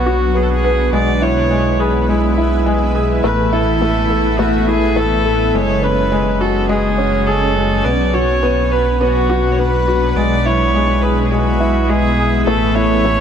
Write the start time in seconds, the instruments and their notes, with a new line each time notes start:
Already playing: detuned saw bass B1, ambient pad F#3 B3 D4 B4 F#5, felt piano B3 F#4 B4, viola F#4
0.06 felt piano F#4
0.35 felt piano B3, viola G#4
0.42 viola A4
0.50 viola G#4
0.64 felt piano B4
0.92 detuned saw bass B1, felt piano G#3, ambient pad G#3 E4 E5, viola D5
1.22 felt piano E4, viola C#5
1.51 felt piano G#3
1.79 felt piano G#4, viola B4
2.09 felt piano G#3, viola E4
2.38 felt piano E4
2.66 felt piano G#3
2.95 felt piano G#4
3.23 detuned saw bass A1, felt piano A3, ambient pad B3, viola B4
3.53 felt piano E4, viola A4
3.81 felt piano A3
4.10 felt piano A4
4.39 felt piano A3, viola F#4
4.68 felt piano E4, viola G#4
4.96 felt piano A3, viola A4
5.26 felt piano A4
5.54 detuned saw bass F#1, felt piano G#3, ambient pad C#4 F#4 C#5 G#5, viola C#5
5.83 felt piano C#4, viola B4
6.12 felt piano G#3
6.41 felt piano F#4, viola A4
6.69 felt piano G#3, viola G#4
6.98 felt piano C#4
7.27 felt piano G#4, viola A4
7.56 felt piano G#3
7.84 detuned saw bass B1, ambient pad F#3 B3 D4 B4 F#5, felt piano B3, viola D5
8.14 felt piano F#4, viola C#5
8.43 felt piano B3
8.71 viola B4, felt piano B4
9.00 felt piano B3, viola F#4
9.30 felt piano F#4
9.52 viola C#5
9.58 felt piano B3, viola B4
9.88 felt piano F#4
10.15 detuned saw bass B1, ambient pad G#3 B3 E4 E5, felt piano G#3, viola D5
10.45 felt piano E4, viola C#5
10.74 felt piano G#3
11.02 felt piano G#4, viola B4
11.25 viola G#4
11.31 felt piano G#3, viola F#4
11.61 felt piano E4
11.88 felt piano G#3, viola G#4
12.18 felt piano G#4
12.46 detuned saw bass A1, felt piano A3, ambient pad E4, viola A4
12.75 felt piano E4, viola C#5
13.05 felt piano A3